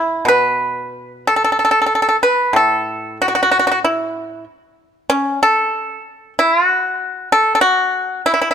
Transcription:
Already playing: A2 E4
0.25 B2 B4
1.27 A4
1.36 A4
1.44 A4
1.52 A4
1.59 A4
1.65 A4
1.71 A4
1.82 A4
1.86 A4
1.95 A4
2.02 A4
2.09 A4
2.23 B4
2.53 A2 A4
3.22 F#4
3.28 F#4
3.35 F#4
3.43 F#4
3.51 F#4
3.59 F#4
3.67 F#4
3.72 F#4
3.84 E4
5.10 C#4
5.43 A4
6.39 E4
6.66 F#4
7.32 A4
7.55 A4
7.61 F#4
8.26 E4
8.34 E4
8.42 E4
8.51 E4

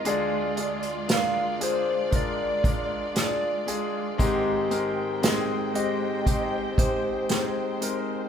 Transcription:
Already playing: G#3 F4
0.05 D2 D3 G#3 D4 F4 G#4 D5, closed hi-hat
0.56 G#3 D4 F4 G#4, closed hi-hat
0.83 closed hi-hat
1.08 G#3 D4 F4 A#4, snare, closed hi-hat
1.12 F5
1.59 G#3 D4 F4 G#4, closed hi-hat
1.63 C5
2.11 G#3 D4 F4 A#4, kick, closed hi-hat
2.16 D5
2.63 G#3 D4 F4 A#4, kick, closed hi-hat
3.14 G#3 D4 F4 G#4, snare, closed hi-hat
3.19 D5
3.66 G#3 D4 F4 G#4, closed hi-hat
4.18 G#2 D#3 G#3 C4 D#4 G4 C5 G5, kick, closed hi-hat
4.70 G#3 C4 D#4 A#4, closed hi-hat
5.22 G#3 C4 D#4 G#4, snare, closed hi-hat
5.74 G#3 C4 D#4 G4 D#5, closed hi-hat
6.25 G#3 C4 D#4 G4, kick, closed hi-hat
6.78 G#3 C4 D#4 G4 C5, kick, closed hi-hat
7.29 G#3 C4 D#4 G#4, snare, closed hi-hat
7.81 G#3 C4 D#4 A#4, closed hi-hat

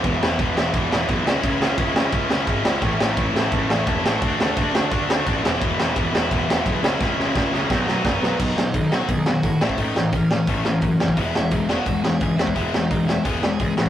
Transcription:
0.03 E1 E2 B2 E3 G#3 B3 E4, kick, crash
0.21 E1 E2 B2 E3 G#3 B3 E4, snare
0.39 E1 E2 B2 E3 G#3 B3 E4, kick, crash
0.56 E1 E2 B2 E3 G#3 B3 E4, snare
0.73 E1 E2 B2 E3 G#3 B3 E4, kick, crash
0.90 E1 E2 B2 E3 G#3 B3 E4, snare
1.08 B1 E2 B2 E3 G#3 B3 E4, kick, crash
1.25 C#2 C#3 G#3 C#4 E4, snare
1.43 C#2 C#3 G#3 C#4 E4, kick, crash
1.60 C#2 C#3 G#3 C#4 E4, snare
1.77 C#2 C#3 G#3 C#4 E4, kick, crash
1.94 C#2 C#3 G#3 C#4 E4, snare
2.12 C#2 C#3 G#3 C#4 E4, kick, crash
2.29 C#2 C#3 G#3 C#4 E4, snare
2.46 G#1 C#3 G#3 C#4 E4, kick, crash
2.64 C#2 C#3 G#3 C#4 E4, snare
2.81 A1 A2 E3 A3 C#4 E4, kick, crash
2.98 A1 A2 E3 A3 C#4 E4, snare
3.16 A1 A2 E3 A3 C#4 E4, kick, crash
3.34 A1 A2 E3 A3 C#4 E4, snare
3.52 A1 A2 E3 A3 C#4 E4, kick, crash
3.68 A1 A2 E3 A3 C#4 E4, snare
3.86 E1 A2 E3 A3 C#4 E4, kick, crash
4.03 A1 A2 E3 A3 C#4 E4, snare
4.21 D2 D3 A3 D4 F#4, kick, crash
4.38 D2 D3 A3 D4 F#4, snare
4.56 D2 D3 A3 D4 F#4, kick, crash
4.73 D2 D3 A3 D4 F#4, snare
4.90 D2 D3 A3 D4 F#4, kick, crash
5.08 D2 D3 A3 D4 F#4, snare
5.25 A1 D3 A3 D4 F#4, kick, crash
5.42 E1 E2 B2 E3 G#3 B3 E4, snare
5.61 E1 E2 B2 E3 G#3 B3 E4, kick, crash
5.79 E1 E2 B2 E3 G#3 B3 E4, snare
5.96 E1 E2 B2 E3 G#3 B3 E4, kick, crash
6.14 E1 E2 B2 E3 G#3 B3 E4, snare
6.30 E1 E2 B2 E3 G#3 B3 E4, kick, crash
6.48 E1 E2 B2 E3 G#3 B3 E4, snare
6.66 B1 E2 B2 E3 G#3 B3 E4, kick, crash
6.83 C#2 C#3 G#3 C#4 E4, snare
7.01 C#2 C#3 G#3 C#4 E4, kick, snare
7.18 C#2 C#3 G#3 C#4 E4, snare
7.35 C#2 C#3 G#3 C#4 E4, kick, snare
7.53 C#2 C#3 G#3 C#4 E4, snare
7.70 B1 B2 D#3 F#3 B3 D#4, kick, snare
7.87 B1 B2 D#3 F#3 B3 D#4, snare
8.04 F#1 B2 D#3 F#3 B3 D#4, kick, snare
8.22 B1 B2 D#3 F#3 B3 D#4 B4, snare
8.39 B1 B2 D#3 F#3 D#4 D#5, kick, crash
8.57 B1 B2 D#3, snare
8.74 B1 B2 D#3, kick, open hi-hat
8.92 B2 D#3 F#3 F#4 F#5, snare
9.08 B1 B2 D#3 G#4 G#5, kick, open hi-hat
9.26 B1 B2 D#3 F#4 F#5, snare
9.43 A2 B2 D#3, kick, open hi-hat
9.61 A1 A2 E3 A3 E4 E5, snare
9.69 kick
9.78 A1 A2 E3 A3 D#4 D#5, kick, open hi-hat
9.96 A1 A2 E3, snare
10.12 A1 A2 E3 C#4 C#5, kick, open hi-hat
10.31 A2 E3, snare
10.47 A1 A2 E3 A3, kick, open hi-hat
10.65 A1 A2 E3, snare
10.81 F#2 A2 E3, kick, open hi-hat
11.00 F#1 A2 E3 C#4 C#5, snare
11.08 kick
11.17 E1 E3 G#3 B3 E4 E5, kick, open hi-hat
11.35 E1 E3 G#3, snare
11.51 E1 E3 G#3, kick, open hi-hat
11.57 D#5
11.69 E3 G#3 B3 F#4 F#5, snare
11.86 E1 E3 G#3, kick, open hi-hat
12.02 E1 E3 G#3 G#4 G#5, snare
12.21 C#2 E3 G#3, kick, open hi-hat
12.36 E2 E3 G#3 E4 E5, snare
12.47 kick
12.55 E1 E3 G#3 B3, kick, open hi-hat
12.73 E1 E3 G#3, snare
12.81 D#4 D#5
12.91 E1 E3 G#3, kick, open hi-hat
13.06 E3 G#3 E4 E5, snare
13.24 E1 E3 G#3 B3 G#4 G#5, kick, open hi-hat
13.42 E1 E3 G#3, snare
13.59 C#2 E3 G#3, kick, open hi-hat
13.77 A1 E3 G#3, snare
13.86 kick

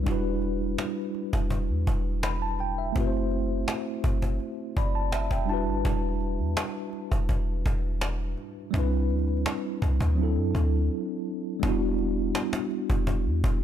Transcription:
0.03 E1 G3 D4, cajon bass
0.07 E4 F#4
0.11 B4
0.42 cajon slap
0.78 cajon slap
1.14 cajon slap
1.33 E1, cajon bass
1.50 cajon bass
1.69 E2
1.87 E1, cajon bass
2.23 B5, cajon slap
2.42 A5
2.59 G5, cajon slap
2.78 E5
2.92 F#1 A3 C4 E4, cajon bass
2.98 F#4 B4
3.07 C5
3.31 cajon slap
3.68 cajon slap
4.04 F#1, cajon bass
4.22 cajon bass
4.40 cajon slap
4.77 F#1 D5 B5, cajon bass
4.95 A5
5.12 E5, cajon slap
5.31 E1 E5 G5, cajon bass
5.45 G3 D4, cajon slap
5.49 E4 F#4 A5
5.53 B4
5.67 G1
5.85 E1, cajon bass
6.21 cajon slap
6.39 E2
6.57 cajon slap
6.93 cajon slap
7.12 E1, cajon bass
7.29 E1, cajon bass
7.66 E1, cajon bass
8.01 cajon slap
8.37 cajon slap
8.71 C2 G3 C4, cajon bass
8.75 D4 E4
8.79 B4
9.10 D2, cajon slap
9.19 cajon slap
9.28 cajon slap
9.37 cajon slap
9.46 cajon slap
9.82 C2, cajon bass
10.01 D2, cajon bass
10.15 F#3 C4, cajon slap
10.19 D4 E4
10.23 A4
10.37 F#2
10.55 D2, cajon bass
11.60 E1 G3 B3, cajon bass
11.64 D4 E4
11.68 F#4
11.98 cajon slap
12.35 cajon slap
12.53 cajon slap
12.71 cajon slap
12.90 E1, cajon bass
13.07 cajon bass
13.26 E2
13.44 E1, cajon bass

